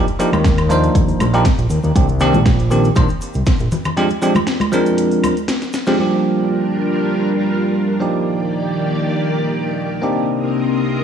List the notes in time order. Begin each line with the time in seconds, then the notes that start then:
0.08 closed hi-hat, cabasa
0.19 F3 A#3 D4 D#4 G4, open hi-hat, cabasa
0.32 D#2, closed hi-hat, high conga, low conga, cabasa, high woodblock
0.44 kick, snare, closed hi-hat, cabasa
0.58 closed hi-hat, cabasa, high woodblock
0.69 F3 A#3 D4 D#4 C5, open hi-hat, cabasa
0.83 closed hi-hat, cabasa
0.95 D#2, kick, closed hi-hat, cabasa
1.08 open hi-hat, cabasa
1.20 A#1, open hi-hat, high conga, cabasa, high woodblock
1.33 F3 A#3 D4 D#4 G4, closed hi-hat, cabasa
1.45 kick, snare, closed hi-hat, cabasa
1.58 A#1, closed hi-hat, cabasa
1.70 D#2, open hi-hat, cabasa
1.83 D#2, closed hi-hat, cabasa
1.96 C2 D#3 A#3 C4 D4 G4, kick, closed hi-hat, cabasa
2.08 closed hi-hat, cabasa
2.20 D#3 A#3 C4 D4 G4, open hi-hat, cabasa
2.33 A#1, closed hi-hat, high conga, low conga, cabasa
2.46 kick, snare, closed hi-hat, cabasa
2.59 closed hi-hat, cabasa
2.71 D#3 A#3 C4 D4 G4, open hi-hat, cabasa
2.84 closed hi-hat, cabasa
2.96 A#1 D#3 A#3 C4 D4 C5, kick, closed hi-hat, cabasa, high woodblock
3.09 closed hi-hat, cabasa
3.21 open hi-hat, cabasa
3.34 C2, closed hi-hat, cabasa
3.46 kick, snare, closed hi-hat, cabasa
3.59 A#1, closed hi-hat, cabasa
3.72 open hi-hat, low conga, cabasa
3.85 closed hi-hat, low conga, cabasa, high woodblock
3.97 F3 G#3 C4 D4 G4, closed hi-hat, cabasa
4.10 closed hi-hat, cabasa
4.22 F3 G#3 C4 D4 G4, open hi-hat, cabasa
4.35 closed hi-hat, high conga, low conga, cabasa, high woodblock
4.47 snare, closed hi-hat, cabasa
4.60 closed hi-hat, high conga, cabasa, high woodblock
4.72 F3 G#3 C4 D4 A#4, open hi-hat, cabasa
4.86 closed hi-hat, cabasa
4.98 closed hi-hat, cabasa
5.12 open hi-hat, cabasa
5.24 open hi-hat, high conga, cabasa, high woodblock
5.37 closed hi-hat, cabasa
5.48 snare, closed hi-hat, cabasa
5.62 snare, closed hi-hat, cabasa
5.73 snare, open hi-hat, cabasa
5.86 F3 G#3 C4 D4 G4, snare, closed hi-hat, cabasa
5.98 F3 G3 A#3 D4 F4 G4 A#4
8.00 D#3 F3 A#3 D4 D#4 G4 D5
10.02 C3 A#3 C4 D4 D#4 G4 A#4 D#6